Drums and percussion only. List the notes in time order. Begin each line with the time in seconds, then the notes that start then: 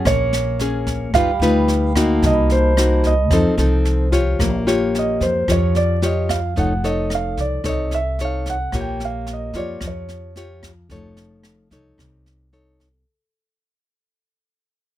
0.05 kick, cross-stick, snare
0.33 snare
0.59 snare
0.87 kick, snare
1.14 kick, cross-stick, snare
1.42 snare
1.68 snare
1.95 kick, cross-stick, snare
2.22 kick, snare
2.50 snare
2.77 cross-stick, snare
3.04 kick, snare
3.31 kick, cross-stick, snare
3.58 snare
3.85 snare
4.12 kick, snare
4.40 kick, cross-stick, snare
4.67 snare
4.95 snare
5.21 kick, snare
5.48 kick, cross-stick, snare
5.75 snare
6.02 snare
6.29 kick, cross-stick, snare
6.56 kick, snare
6.84 snare
7.10 cross-stick, snare
7.37 kick, snare
7.64 kick, cross-stick, snare
7.91 snare
8.19 snare
8.46 kick, snare
8.72 kick, cross-stick, snare
9.00 snare
9.27 snare
9.53 kick, snare
9.81 kick, cross-stick, snare
10.09 snare
10.36 snare
10.63 kick, cross-stick, snare
10.90 kick, snare
11.17 snare
11.44 cross-stick, snare
11.71 kick, snare
11.98 kick, cross-stick, snare
12.26 snare
12.53 snare
12.79 kick, snare